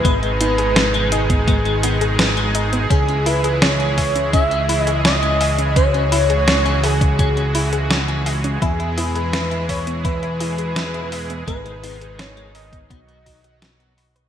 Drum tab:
HH |xxxxxxxxxxxxxxxx|xxoxxxoxxxoxxxox|xxoxxxoxxxoxxxox|xxoxxxoxxxoxxxox|
SD |----o-------o---|----o-------o---|----o-------o---|----o-------o---|
BD |o------oo-------|o-----o-o-------|o------oo-------|o-----o-o-------|

HH |xxoxxxoxxxoxxxox|
SD |----o-------o---|
BD |o------oo-o-----|